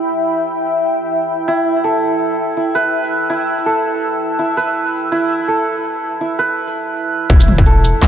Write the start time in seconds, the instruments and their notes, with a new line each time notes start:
Already playing: ambient pad E4 E5 G5 B5
1.48 santur E4
1.73 ambient pad E6
1.84 santur A4
2.57 santur E4
2.75 santur B4
3.30 santur E4
3.66 santur A4
4.39 santur E4
4.57 santur B4
5.12 santur E4
5.48 santur A4
6.21 santur E4
6.39 santur B4
7.30 808-style bass E1, santur E4, kick, closed hi-hat, impact
7.40 shaker
7.48 closed hi-hat, mid tom
7.58 kick
7.66 santur A4, closed hi-hat
7.84 closed hi-hat, shaker
8.02 808-style bass B1, clap, closed hi-hat, mid tom